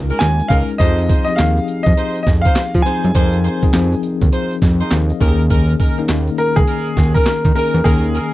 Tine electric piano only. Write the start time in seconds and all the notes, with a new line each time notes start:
Already playing: G#3 C#4 D#4 F4 A#4
0.50 G#3 C#4 D#4 A#4
0.79 F3 C4 D#4 G#4
1.28 F3 C4 D#4 G4
1.35 G#4
2.86 F3 C4 D#4 G#4
3.15 F3 C4 D#4 A#4
3.62 F3 C4 D#4 G#4
4.62 C5
4.81 D#5
4.92 F5
5.10 D#5
5.20 D#3 A#3 C#4 G4
5.28 G#4
5.98 D#3 A#3 C#4 D#4
7.55 D#3 A#3 C#4 G#4
7.85 D#3 A#3 C#4 G#4